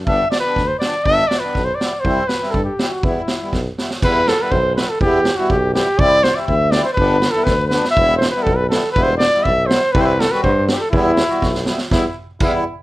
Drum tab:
CC |--------|--------|--------|--------|
SD |--o-o-o-|--o-o-o-|--oo--o-|--o-o-oo|
BD |o---o---|o---o---|o---o---|o---o---|

CC |x-------|--------|--------|--------|
SD |--o---o-|--o---o-|--o---oo|--o-o-oo|
BD |o---o---|o---o---|o---o---|o---o---|

CC |--------|--------|--------|--------|
SD |--o---oo|--o---o-|--oo--o-|--o-oooo|
BD |o---o---|o---o---|o---o---|o---o---|

CC |----x---|
SD |o-------|
BD |o---o---|